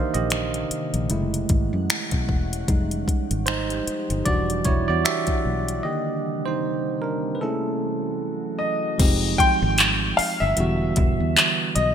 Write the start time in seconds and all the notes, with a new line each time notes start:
Already playing: C3 D#3 A#3 D4 D#4 G4 A#4 C5 D#5 F5
0.14 A#1 G4 D#5, closed hi-hat
0.30 finger snap, closed hi-hat
0.54 closed hi-hat
0.71 muted fingered electric bass stroke, closed hi-hat
0.94 A#1, closed hi-hat
1.10 F#1 E3 G#3 A3 C#4 E4 F#5, closed hi-hat
1.34 closed hi-hat
1.49 G#1, kick, closed hi-hat
1.73 F#2
1.90 finger snap, closed hi-hat
2.11 B1, kick, closed hi-hat
2.29 E1, kick
2.53 closed hi-hat
2.68 F1 F3 G3 G#3 D#4 G4, kick, closed hi-hat
2.91 closed hi-hat
3.08 kick, closed hi-hat
3.31 G#1, closed hi-hat
3.46 D#4 C5, finger snap, closed hi-hat
3.70 closed hi-hat
3.87 muted fingered electric bass stroke, closed hi-hat
4.10 G1, closed hi-hat
4.25 E1 E3 G3 D4 F#4 D5 F#5, kick, closed hi-hat
4.50 closed hi-hat
4.65 E1 E4 C#5, kick, closed hi-hat
4.88 E2 F#4 D5
5.05 G4 E5, finger snap, closed hi-hat
5.27 kick, closed hi-hat
5.45 B1
5.68 closed hi-hat
5.83 C3 D3 D#3 G3 A#3 C4 G4 D#5
6.46 D#4 C5
7.02 D4 A#4
7.35 B4
7.41 E3 F#3 A3 C#4 E4 F#4 G#4 A4
8.59 D#5
8.98 F1 F3 G#3 C4 D#4 G4, kick, closed hi-hat, crash
9.38 G5 C6, kick, closed hi-hat
9.62 G#1
9.78 clap, closed hi-hat
10.17 F5, muted fingered electric bass stroke, open hi-hat
10.40 G1 E5
10.56 E1 D3 E3 G3 B3, closed hi-hat
10.60 F#4
10.96 E1, kick, closed hi-hat
11.20 E2
11.37 clap, closed hi-hat
11.75 B1 D#5, closed hi-hat